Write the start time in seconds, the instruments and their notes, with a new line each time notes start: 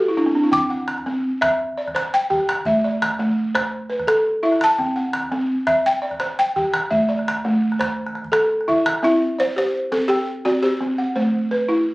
Already playing: balafon A4
0.00 balafon F#4
0.08 balafon E4
0.17 balafon D4 E4
0.26 balafon C4
0.35 balafon D4
0.44 balafon E4
0.52 balafon C4 G5 D6, calabash thump
0.70 balafon F#5, calabash click
0.88 calabash click
0.98 calabash thump, calabash click
1.06 balafon C4, calabash click
1.41 balafon E5, calabash thump, calabash click
1.77 balafon D5
1.88 calabash thump, calabash click
1.95 balafon C5, calabash click
2.14 balafon G5
2.30 balafon G4 G5, calabash thump
2.40 calabash click
2.49 calabash click
2.65 balafon A3 E5, calabash thump
2.84 balafon D5, calabash click
3.02 calabash click
3.11 calabash thump, calabash click
3.19 balafon A3, calabash click
3.55 balafon C5, calabash thump, calabash click
3.90 balafon B4
4.00 calabash thump, calabash click
4.07 balafon A4, calabash click
4.43 balafon E4 E5
4.52 calabash click
4.61 balafon A5, calabash click
4.78 balafon C4 G5, calabash thump
4.96 balafon F#5, calabash click
5.13 calabash click
5.23 calabash thump, calabash click
5.32 balafon C4, calabash click
5.67 balafon E5, calabash thump, calabash click
5.86 balafon G5
6.02 balafon D5
6.11 calabash thump, calabash click
6.20 balafon C5, calabash click
6.39 balafon G5
6.56 balafon G4 G5, calabash thump
6.65 calabash click
6.74 calabash click
6.91 balafon A3 E5, calabash thump
7.09 balafon D5
7.19 calabash click
7.28 calabash click
7.37 calabash thump, calabash click
7.45 balafon A3
7.72 calabash click
7.79 balafon C5, calabash thump, calabash click
8.07 calabash click
8.15 calabash click
8.24 calabash thump
8.32 balafon A4, calabash click
8.61 calabash click
8.68 balafon E4 E5, calabash thump
8.86 calabash click
9.03 balafon C4 E4 E5
9.39 balafon C5 D5
9.56 balafon G4 C5
9.92 balafon C4 A4
10.08 balafon G4 G5
10.45 balafon C4 F#4 D5
10.63 balafon G4 C5
10.80 balafon C4
10.98 balafon F#5
11.16 balafon A3 C5
11.51 balafon B4
11.68 balafon E4